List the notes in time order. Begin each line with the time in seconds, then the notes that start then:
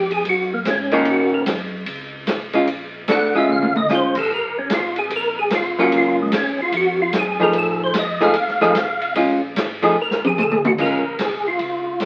Already playing: F2 G4
0.11 G#4, ride
0.25 F#2, kick, ride
0.29 F#4
0.54 A#3
0.65 G#2, kick, snare, hi-hat pedal, ride
0.70 C#4
0.91 D#3 A#3 C#4 F4 F#4, ride
1.05 A#2, kick, ride
1.11 F#4
1.34 A#4
1.46 F#2, kick, snare, hi-hat pedal, ride
1.86 C#2, kick, ride
2.27 C2, kick, snare, hi-hat pedal, ride
2.53 G#3 C#4 F4, ride
2.67 A#1, kick, ride
3.08 G#1 A3 D4 F#4 F#5, kick, snare, hi-hat pedal, ride
3.35 G#3 C#4 F4 E5
3.48 A#1, mid tom
3.52 F5
3.62 mid tom
3.76 D#5, mid tom
3.89 G1 G#3 C#4 F4, snare, hi-hat pedal
3.95 C5
4.15 A4, kick, crash
4.29 F#1, kick
4.34 A#4
4.59 C#4
4.70 G#1, kick, snare, hi-hat pedal, ride
4.74 F4
4.96 G#4, ride
5.10 A#1, kick, ride
5.16 A#4
5.39 G#4
5.50 C2, kick, snare, hi-hat pedal, ride
5.56 F4
5.79 F#3 A#3 C#4 F4 F#4
5.92 C#2, kick, ride
5.98 F4
6.22 G#3
6.32 D#2, kick, snare, hi-hat pedal, ride
6.38 C#4
6.62 F4
6.72 F2, kick, ride
6.77 F#4
7.02 F4
7.13 F#2, kick, snare, hi-hat pedal, ride
7.19 G#4
7.40 F3 A3 D#4 G#4 A#4
7.53 A2, kick, ride
7.58 A4
7.84 C5
7.94 F2, kick, snare, hi-hat pedal, ride
7.99 D#5
8.20 F3 A3 D#4 G#4 F5, snare
8.34 D#2, kick, ride
8.48 snare
8.61 F3 A3 D#4 G#4, snare
8.75 C2, kick, snare, hi-hat pedal, ride
9.01 ride
9.15 A#1 G#3 C#4 F4, kick, ride
9.56 G#1, kick, snare, hi-hat pedal, ride
9.82 F3 A3 D#4 G#4, ride
9.96 F1
10.02 A#4
10.11 snare
10.24 G#4, high tom
10.37 A1 G#4, hi-hat pedal, mid tom
10.42 A4
10.52 mid tom
10.65 F#4, mid tom
10.78 A#1 G#3 C#4 F4 A#4, kick, crash
11.19 C2 G#4, kick, snare, hi-hat pedal, ride
11.48 F4
11.59 C#2, kick, ride
12.00 F2, kick, snare, hi-hat pedal, ride